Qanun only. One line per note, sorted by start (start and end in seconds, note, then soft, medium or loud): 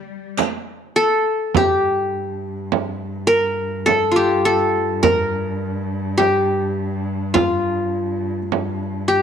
0.96 2.13 A4 medium
1.57 3.35 G4 medium
3.27 3.92 A#4 medium
3.86 4.45 A4 medium
4.12 5.46 F4 medium
4.16 5.42 G4 medium
4.45 5.09 A4 medium
5.03 6.23 A#4 medium
6.18 7.43 G4 medium
7.34 9.14 F4 medium
9.08 9.22 G4 medium